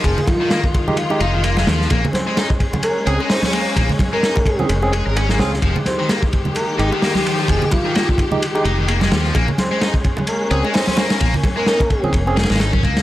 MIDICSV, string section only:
0, 0, Header, 1, 2, 480
1, 0, Start_track
1, 0, Tempo, 465116
1, 47, Time_signature, 4, 2, 24, 8
1, 13440, End_track
2, 0, Start_track
2, 0, Title_t, "String section"
2, 0, Program_c, 0, 48
2, 0, Note_on_c, 0, 51, 84
2, 0, Note_on_c, 0, 56, 77
2, 50, Note_on_c, 0, 65, 92
2, 1930, Note_off_c, 0, 51, 0
2, 1950, Note_off_c, 0, 65, 0
2, 1968, Note_on_c, 0, 61, 89
2, 5770, Note_off_c, 0, 61, 0
2, 5809, Note_on_c, 0, 51, 82
2, 5810, Note_on_c, 0, 67, 95
2, 9607, Note_off_c, 0, 56, 0
2, 9610, Note_off_c, 0, 51, 0
2, 9611, Note_off_c, 0, 67, 0
2, 9648, Note_on_c, 0, 56, 74
2, 9649, Note_on_c, 0, 61, 94
2, 11549, Note_off_c, 0, 56, 0
2, 11567, Note_on_c, 0, 58, 76
2, 13440, Note_off_c, 0, 58, 0
2, 13440, Note_off_c, 0, 61, 0
2, 13440, End_track
0, 0, End_of_file